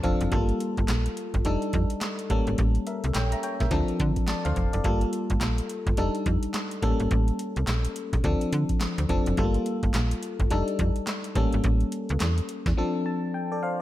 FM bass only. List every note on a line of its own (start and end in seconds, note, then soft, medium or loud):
0.04 0.16 F1 medium
0.21 0.29 F#1 medium
0.32 0.52 G1 loud
0.78 0.85 G1 medium
0.89 1.09 A#1 medium
1.34 1.42 G1 medium
1.45 1.57 F1 medium
1.74 1.86 F2 loud
2.30 2.42 A1 medium
2.47 2.55 G#1 medium
2.58 2.78 A1 loud
3.04 3.12 C2 medium
3.15 3.35 A#1 medium
3.60 3.68 A#1 medium
3.71 3.83 D2 medium
4.00 4.12 D3 loud
4.46 4.53 D2 medium
4.56 4.68 F1 medium
4.74 4.81 F#1 medium
4.85 5.05 G1 loud
5.30 5.38 G1 medium
5.41 5.61 A#1 medium
5.87 5.94 G1 loud
5.98 6.10 F1 medium
6.26 6.38 F2 loud
6.83 6.95 A1 medium
7.00 7.08 G#1 medium
7.11 7.31 A1 loud
7.57 7.64 C2 medium
7.68 7.88 A#1 medium
8.13 8.21 A#1 medium
8.24 8.36 D2 loud
8.53 8.65 D3 loud
8.98 9.06 D2 medium
9.09 9.21 F1 medium
9.27 9.35 F#1 medium
9.38 9.58 G1 loud
9.83 9.91 G1 medium
9.95 10.14 A#1 loud
10.40 10.47 G1 medium
10.51 10.63 F1 loud
10.79 10.91 F2 loud
11.36 11.48 A1 medium
11.54 11.61 G#1 medium
11.64 11.84 A1 loud
12.10 12.18 C#2 loud
12.21 12.41 E2 loud
12.66 12.74 E2 loud